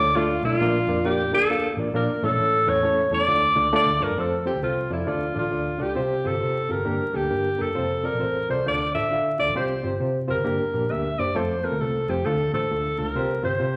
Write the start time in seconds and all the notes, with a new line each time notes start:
Already playing: D5
0.00 D2
0.16 A3 D4 F4 A4 D5
0.43 B1 A3 D4 F4 A4 D5
0.59 A#1 A#2 A#3 D4 F4 A#4 D5
0.87 F2 A#3 D4 F4 A#4 D5
1.05 A#3 D4 F4 G4 A#4 D5
1.32 D2 A#3 D4 F4 A4 A#4 D5
1.49 A#3 D4 F4 A#4 F5
1.77 A1 A#3 D4 F4 A#4 D5
1.94 A#1 A#3 D4 F4 A#4 D5
2.22 A1 A2 A3 C#4 E4 A4 C#5
2.30 A#1
2.38 A1
2.66 E2 A3 C#4 E4 A4 C#5
2.83 A3 C#4 E4 A4 C#5
3.11 E2 A3 C#4 E4 A4 C#5 D5
3.28 D2 D3 A3 D4 F4 A4 D5
3.55 C#2 A3 D4 F4 A4 D5
3.73 A3 D4 F4 A4 D5
3.86 D2
4.00 G2 A3 D4 F4 A4 A#4 D5
4.09 F#2
4.17 F2 C4 F4 A4 C5
4.45 C4 F4 G4 A4 C5
4.54 D2
4.62 C2 C4 F4 A4 C5
4.90 F2 C4 E4 F4 A4 D5
5.07 D2 D3 D4 F4 A4 D5
5.34 A1 D4 F4 A4 D5
5.39 F4
5.51 D2 D4 F4 A4 D5
5.78 C#2 D4 F4 A4 D5
5.82 G4
5.95 C2 C3 C4 F4 G4 C5
6.24 G1 C4 F4 G4 A4 C5
6.40 C3 C4 F4 G4 C5
6.69 G1 C4 F4 G4 A4 A#4
6.85 G1 G2 A#3 D4 G4 A#4
7.01 muted picked electric bass stroke
7.13 D2 A#3 D4 G4 A4
7.29 G1 A#3 D4 G4 A#4
7.58 F#1 A#3 D4 G4 A4 A#4
7.75 F1 C4 F4 A4 C5
8.04 C4 F4 A4 A#4 D5
8.13 A#1
8.19 A1 C4 F4 A4 C5
8.49 C2 C4 F4 A4 C5 D5
8.66 D2 D3 D4 F4 A4 D5
8.94 A1 D4 F4 A4 D5 E5
9.11 D4 F4 A4 F5
9.38 D2 D4 F4 A4 D5
9.48 A1
9.55 C2 C3 C4 F4 G4 C5
9.83 G1 C4 F4 G4 C5
10.00 C3 C4 F4 G4 C5
10.28 G1 C4 F4 G4 A#4 C5
10.44 G1 G2 A#3 D4 G4 A#4
10.61 muted picked electric bass stroke
10.73 A#1 A#3 D4 G4 A#4
10.90 D2 A#3 D4 G4 A#4 E5
11.19 F#1 A#3 D4 G4 C5 D5
11.35 F2 A3 C4 F4 A4 C5
11.63 A3 C4 F4 A4 A#4
11.72 D2
11.81 C2 A3 C4 F4 A4
12.09 F2 A3 C4 F4 G4 C5
12.25 D2 D3 A3 D4 F4 A4
12.53 A1 A3 D4 F4 A4 C5
12.70 D2 A3 D4 F4 A4
12.98 C#2 A3 D4 F4 A4
13.10 A#4
13.15 C2 C3 C4 F4 G4 C5
13.43 G1 C4 F4 G4 C5
13.59 C3 C4 F4 G4 C5